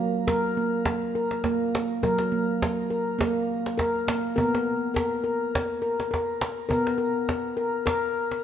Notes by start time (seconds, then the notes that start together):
Already playing: F#3 A#3
0.27 A#4, cajon bass, cajon slap
0.43 cajon slap
0.57 A#3, cajon slap
0.85 cajon bass, cajon slap
1.02 cajon slap
1.15 A#4, cajon slap
1.31 cajon slap
1.44 A#3, cajon bass, cajon slap
1.75 cajon slap
1.90 cajon slap
2.03 F#3 A#4, cajon bass
2.18 cajon slap
2.32 A#3
2.62 cajon bass, cajon slap
2.90 A#4, cajon slap
3.07 cajon slap
3.19 A#3, cajon bass, cajon slap
3.50 cajon slap
3.66 cajon slap
3.78 A#4, cajon bass, cajon slap
3.96 cajon slap
4.07 A#3, cajon slap
4.36 B3 A#4, cajon bass
4.55 cajon slap
4.67 cajon slap
4.94 A#4, cajon bass, cajon slap
5.13 cajon slap
5.24 A#4, cajon slap
5.55 cajon bass, cajon slap
5.72 cajon slap
5.82 A#4, cajon slap
6.00 cajon slap
6.11 A#4, cajon bass, cajon slap
6.41 cajon slap
6.58 cajon slap
6.69 B3 A#4, cajon bass
6.87 cajon slap
6.98 A#4, cajon slap
7.29 cajon bass, cajon slap
7.45 cajon slap
7.57 A#4, cajon slap
7.86 A#4, cajon bass, cajon slap
8.02 cajon slap
8.16 cajon slap
8.31 cajon slap